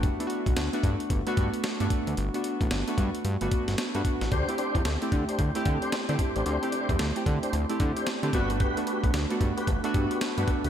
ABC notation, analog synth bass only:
X:1
M:4/4
L:1/16
Q:"Swing 16ths" 1/4=112
K:G
V:1 name="Analog synth bass" clef=bass
z3 B,,, D,, z G,, z G,,, z G,, z2 G,, z D,, | G,,, z2 A,,, G,,, z G,, z G,, G,,, z G,,, z G,, z A,,, | D,, z2 E,, D,, z D, z D,, z D, z2 D, z A,,, | D,, z2 E,, D,, z D, z D,, z D, z2 D, G,,,2- |
G,,, z2 B,,, D,, z G,, z G,,, z G,, z2 G,, z D,, |]